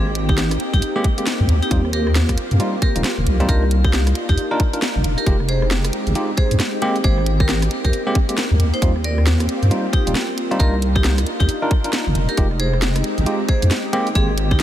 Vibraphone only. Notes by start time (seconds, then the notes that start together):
0.29 D#4 G4
0.73 D#4 G4
1.62 D#4 G4
1.93 G4 A#4
2.82 G4 A#4
3.49 G4 A#4
3.84 D#4 G4
4.29 D#4 G4
5.18 G4 A#4
5.49 G#4 C5
6.37 G#4 C5
7.04 G#4 C5
7.40 G4 A#4
7.84 G4 A#4
8.74 D#4 C5
9.04 A#4 D5
9.93 D#4 G4
10.60 G4 A#4
10.95 D#4 G4
11.40 D#4 G4
12.29 G4 A#4
12.60 G#4 C5
13.48 G#4 C5
14.15 C4 G#4
14.51 D#4 G4